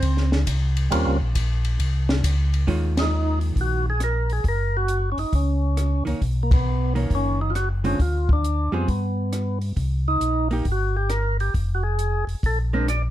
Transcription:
0.00 0.46 C#2 medium
0.00 0.29 C4 medium
0.00 0.30 C5 loud
0.00 kick soft
0.00 ride medium
0.17 snare soft
0.32 snare medium
0.47 0.90 C2 loud
0.47 kick soft
0.47 hi-hat pedal medium
0.47 ride medium
0.77 ride medium
0.91 1.05 D#2 medium
0.91 1.17 G3 medium
0.91 1.18 A#3 medium
0.91 1.18 C4 medium
0.91 1.18 C#4 medium
0.91 1.18 F4 medium
0.91 kick soft
0.91 ride medium
1.07 1.21 C#2 medium
1.20 1.34 A#1 medium
1.35 1.78 A#1 loud
1.35 kick soft
1.35 hi-hat pedal medium
1.35 ride medium
1.65 ride medium
1.79 2.22 C2 medium
1.79 kick soft
1.79 ride medium
2.09 snare medium
2.24 2.66 C#2 loud
2.24 kick soft
2.24 hi-hat pedal medium
2.24 ride medium
2.54 ride medium
2.67 3.52 D#2 medium
2.67 3.91 D#3 medium
2.67 3.91 G#3 medium
2.67 3.91 C#4 medium
2.67 3.92 F4 medium
2.67 kick soft
2.67 open hi-hat soft
2.97 3.39 D#4 loud
2.97 snare medium
2.97 ride medium
3.41 open hi-hat soft
3.56 4.40 A#1 medium
3.56 kick soft
3.56 open hi-hat soft
3.61 3.86 F#4 medium
3.90 4.02 G#4 medium
4.00 4.32 A#4 medium
4.00 cross-stick medium
4.00 closed hi-hat medium
4.30 4.45 G#4 medium
4.30 open hi-hat soft
4.44 5.14 F#1 medium
4.44 kick soft
4.44 open hi-hat soft
4.48 4.77 A#4 medium
4.77 5.10 F#4 medium
4.88 closed hi-hat medium
5.12 5.19 C#4 medium
5.17 5.25 F#1 soft
5.17 5.34 D#4 medium
5.17 open hi-hat soft
5.32 6.03 C#2 medium
5.32 6.04 C#4 medium
5.32 kick soft
5.32 open hi-hat soft
5.77 cross-stick medium
5.77 closed hi-hat soft
6.05 6.14 C#2 soft
6.05 6.19 D#3 medium
6.05 6.20 A#3 medium
6.05 6.20 C#4 medium
6.05 open hi-hat soft
6.22 7.06 B1 medium
6.22 kick soft
6.22 open hi-hat soft
6.43 6.52 A#3 medium
6.51 6.94 B3 loud
6.51 kick medium
6.51 ride medium
6.95 7.52 D#3 medium
6.95 7.52 A#3 medium
6.95 7.52 C#4 medium
6.95 open hi-hat soft
7.10 7.95 F#1 medium
7.10 kick soft
7.10 open hi-hat soft
7.15 7.40 C#4 medium
7.41 7.52 D#4 medium
7.50 7.54 F4 medium
7.55 7.69 F#4 medium
7.55 cross-stick medium
7.55 closed hi-hat medium
7.84 7.98 D3 medium
7.84 7.98 G#3 medium
7.84 7.98 C4 medium
7.84 8.01 C#4 medium
7.84 7.98 F4 medium
7.84 open hi-hat soft
7.99 8.69 D2 medium
7.99 8.31 F4 medium
7.99 kick soft
7.99 open hi-hat soft
8.29 8.72 D4 medium
8.29 kick soft
8.44 closed hi-hat medium
8.72 8.87 F2 medium
8.72 8.86 G3 medium
8.72 8.87 B3 medium
8.72 8.89 C4 medium
8.72 8.86 F4 medium
8.72 8.87 G#4 medium
8.88 9.73 G2 medium
8.88 9.59 B3 medium
8.88 kick soft
8.88 open hi-hat soft
9.33 cross-stick medium
9.33 closed hi-hat medium
9.61 open hi-hat soft
9.76 10.18 C2 medium
9.76 kick soft
9.76 open hi-hat soft
10.08 10.48 D#4 loud
10.21 10.62 A#1 medium
10.21 closed hi-hat medium
10.51 10.64 A#3 medium
10.51 10.65 D#4 medium
10.51 10.65 G4 medium
10.51 open hi-hat soft
10.65 11.50 G1 medium
10.65 kick soft
10.65 open hi-hat soft
10.72 10.96 F#4 medium
10.97 11.11 G4 medium
11.10 11.37 A#4 loud
11.10 cross-stick medium
11.10 closed hi-hat medium
11.40 11.54 G4 medium
11.40 open hi-hat soft
11.54 12.24 F1 medium
11.54 kick soft
11.54 open hi-hat soft
11.75 11.84 F#4 medium
11.83 12.25 G#4 loud
11.99 closed hi-hat medium
12.27 12.35 F1 soft
12.27 open hi-hat soft
12.43 13.10 A#1 medium
12.43 12.59 A4 medium
12.43 kick soft
12.43 open hi-hat soft
12.73 12.86 G#3 medium
12.73 12.87 C4 medium
12.73 12.87 D4 medium
12.73 12.87 A#4 medium
12.88 13.02 D5 loud
12.88 cross-stick medium
12.88 closed hi-hat medium

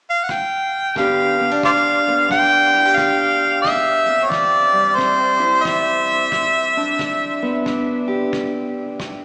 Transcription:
0.10 0.25 F5 loud
0.23 0.33 F#5 medium
0.29 0.97 G5 medium
0.29 kick medium
0.95 1.57 G2 medium
0.95 1.62 D3 medium
0.95 1.38 B3 medium
0.95 1.39 D4 medium
0.95 2.73 G4 medium
0.95 1.59 F5 medium
0.95 kick medium
1.39 1.51 B3 medium
1.51 2.29 D4 soft
1.63 2.25 D3 medium
1.63 1.71 C5 medium
1.63 1.71 D5 medium
1.63 2.26 F5 loud
1.63 kick medium
2.08 3.61 B3 medium
2.29 2.91 G2 medium
2.29 3.60 D4 medium
2.29 2.97 G5 loud
2.29 kick medium
2.74 2.85 E4 medium
2.85 3.64 G4 soft
2.95 3.60 D3 medium
2.95 3.61 F5 medium
2.95 kick medium
3.62 4.26 C3 medium
3.62 4.25 E5 medium
3.62 kick medium
4.06 4.96 C4 medium
4.24 4.32 C#5 medium
4.30 4.92 E3 medium
4.30 4.97 D5 loud
4.30 kick medium
4.73 7.42 G3 medium
4.95 5.58 G2 medium
4.95 6.28 C4 medium
4.95 5.65 C5 medium
4.95 kick medium
5.40 6.31 E4 medium
5.64 6.27 E3 medium
5.64 7.65 E5 loud
5.64 kick medium
6.32 6.94 G2 medium
6.32 kick medium
6.77 7.66 D4 medium
6.99 7.61 D3 medium
6.99 kick medium
7.42 8.97 B3 medium
7.65 8.28 G2 medium
7.65 8.97 D4 medium
7.65 kick medium
8.08 9.25 G4 medium
8.32 8.95 D3 medium
8.32 kick medium
8.99 9.25 G2 medium
8.99 kick medium

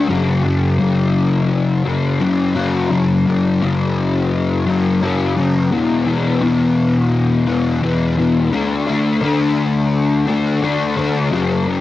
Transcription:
0.00 0.10 A3 medium
0.09 0.78 F#2 loud
0.09 0.44 C#3 loud
0.09 0.44 F#3 loud
0.44 0.79 C#3 medium
0.44 0.81 F#3 medium
0.79 2.19 F#2 medium
0.79 1.85 C#3 medium
0.79 1.83 F#3 medium
1.84 2.20 C#3 medium
1.84 2.21 F#3 medium
2.21 2.89 F#2 medium
2.21 2.56 C#3 medium
2.21 2.54 F#3 medium
2.55 2.90 C#3 medium
2.55 2.91 F#3 medium
2.90 3.60 F#2 loud
2.90 3.27 C#3 loud
2.90 3.25 F#3 loud
3.26 3.61 C#3 medium
3.26 3.62 F#3 medium
3.61 5.00 F#2 medium
3.61 4.67 C#3 medium
3.61 4.65 F#3 medium
4.66 5.01 C#3 medium
4.66 5.02 F#3 medium
5.01 5.69 F#2 medium
5.01 5.37 C#3 medium
5.01 5.35 F#3 medium
5.36 5.70 C#3 medium
5.36 5.69 F#3 medium
5.71 6.40 E2 loud
5.71 6.06 B2 loud
5.71 6.05 E3 loud
6.06 6.42 B2 medium
6.06 6.43 E3 medium
6.41 7.80 E2 medium
6.41 7.47 B2 medium
6.41 7.45 E3 medium
7.46 7.82 B2 medium
7.46 7.82 E3 medium
7.81 8.50 E2 medium
7.81 8.17 B2 medium
7.81 8.15 E3 medium
8.17 8.51 B2 medium
8.17 8.50 E3 medium
8.51 9.20 D3 loud
8.51 8.88 A3 loud
8.51 8.86 D4 loud
8.87 9.22 A3 medium
8.87 9.22 D4 medium
9.21 10.61 D3 medium
9.21 10.28 A3 medium
9.21 10.25 D4 medium
10.27 10.61 A3 medium
10.27 10.63 D4 medium
10.62 11.30 D3 medium
10.62 10.97 A3 medium
10.62 10.95 D4 medium
10.97 11.31 A3 medium
10.97 11.30 D4 medium
11.31 11.81 F#2 loud
11.31 11.67 C#3 loud
11.31 11.66 F#3 loud
11.66 11.81 C#3 medium
11.66 11.81 F#3 medium

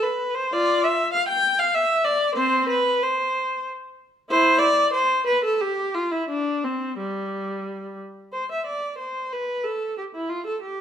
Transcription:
0.03 0.35 B4 medium
0.35 0.51 C5 medium
0.53 0.81 F4 medium
0.53 0.83 D5 loud
0.84 1.14 E5 loud
1.13 1.28 F5 loud
1.29 1.59 G5 loud
1.59 1.75 F5 loud
1.74 2.06 E5 loud
2.04 2.37 D5 loud
2.35 2.66 C4 medium
2.35 2.68 C5 loud
2.69 3.01 B4 loud
3.03 3.66 C5 medium
4.30 4.59 E4 medium
4.30 4.59 C5 loud
4.59 4.92 D5 loud
4.93 5.25 C5 medium
5.27 5.42 B4 medium
5.44 5.60 A4 medium
5.61 5.94 G4 medium
5.94 6.11 F4 medium
6.11 6.28 E4 medium
6.29 6.62 D4 medium
6.64 6.98 C4 medium
6.98 7.98 G3 medium
8.33 8.48 C5 medium
8.52 8.67 E5 medium
8.66 8.98 D5 medium
8.98 9.30 C5 medium
9.33 9.65 B4 medium
9.64 9.97 A4 medium
9.98 10.04 G4 medium
10.15 10.30 E4 medium
10.29 10.45 F4 medium
10.46 10.62 A4 medium
10.62 10.81 G4 medium

